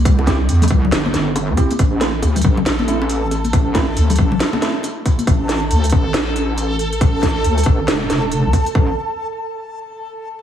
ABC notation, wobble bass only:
X:1
M:4/4
L:1/16
Q:"Swing 16ths" 1/4=138
K:Am
V:1 name="Wobble bass" clef=bass
C,,4 E,,2 C,,2 G,,,2 G,,,3 E,, z2 | A,,,4 D,,2 A,,,2 A,,,8 | A,,,4 D,,2 A,,,2 z8 | A,,,4 D,,2 A,,,2 A,,,8 |
A,,,4 D,,2 A,,,2 E,,,2 E,,,3 D,, z2 | A,,,2 z12 z2 |]